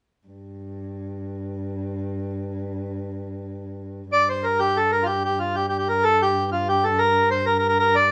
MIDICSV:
0, 0, Header, 1, 3, 480
1, 0, Start_track
1, 0, Key_signature, -2, "minor"
1, 0, Tempo, 319319
1, 434, Time_signature, 12, 3, 24, 8
1, 12201, End_track
2, 0, Start_track
2, 0, Title_t, "Accordion"
2, 0, Program_c, 0, 21
2, 6200, Note_on_c, 0, 74, 103
2, 6443, Note_off_c, 0, 74, 0
2, 6449, Note_on_c, 0, 72, 77
2, 6666, Note_on_c, 0, 70, 71
2, 6690, Note_off_c, 0, 72, 0
2, 6908, Note_on_c, 0, 67, 88
2, 6913, Note_off_c, 0, 70, 0
2, 7167, Note_on_c, 0, 69, 82
2, 7183, Note_off_c, 0, 67, 0
2, 7386, Note_off_c, 0, 69, 0
2, 7392, Note_on_c, 0, 70, 82
2, 7560, Note_on_c, 0, 65, 62
2, 7577, Note_off_c, 0, 70, 0
2, 7609, Note_on_c, 0, 67, 75
2, 7627, Note_off_c, 0, 65, 0
2, 7862, Note_off_c, 0, 67, 0
2, 7885, Note_on_c, 0, 67, 79
2, 8104, Note_off_c, 0, 67, 0
2, 8105, Note_on_c, 0, 65, 71
2, 8346, Note_on_c, 0, 67, 80
2, 8352, Note_off_c, 0, 65, 0
2, 8513, Note_off_c, 0, 67, 0
2, 8553, Note_on_c, 0, 67, 77
2, 8677, Note_off_c, 0, 67, 0
2, 8700, Note_on_c, 0, 67, 69
2, 8839, Note_off_c, 0, 67, 0
2, 8844, Note_on_c, 0, 70, 80
2, 9072, Note_on_c, 0, 69, 112
2, 9081, Note_off_c, 0, 70, 0
2, 9344, Note_off_c, 0, 69, 0
2, 9351, Note_on_c, 0, 67, 80
2, 9770, Note_off_c, 0, 67, 0
2, 9800, Note_on_c, 0, 65, 77
2, 10042, Note_off_c, 0, 65, 0
2, 10052, Note_on_c, 0, 67, 82
2, 10281, Note_on_c, 0, 69, 83
2, 10290, Note_off_c, 0, 67, 0
2, 10501, Note_on_c, 0, 70, 88
2, 10519, Note_off_c, 0, 69, 0
2, 10964, Note_off_c, 0, 70, 0
2, 10983, Note_on_c, 0, 72, 84
2, 11206, Note_off_c, 0, 72, 0
2, 11211, Note_on_c, 0, 70, 83
2, 11384, Note_off_c, 0, 70, 0
2, 11407, Note_on_c, 0, 70, 73
2, 11533, Note_off_c, 0, 70, 0
2, 11556, Note_on_c, 0, 70, 85
2, 11696, Note_off_c, 0, 70, 0
2, 11718, Note_on_c, 0, 70, 89
2, 11956, Note_on_c, 0, 74, 104
2, 11958, Note_off_c, 0, 70, 0
2, 12200, Note_off_c, 0, 74, 0
2, 12201, End_track
3, 0, Start_track
3, 0, Title_t, "Cello"
3, 0, Program_c, 1, 42
3, 412, Note_on_c, 1, 43, 46
3, 6186, Note_off_c, 1, 43, 0
3, 6193, Note_on_c, 1, 43, 52
3, 12201, Note_off_c, 1, 43, 0
3, 12201, End_track
0, 0, End_of_file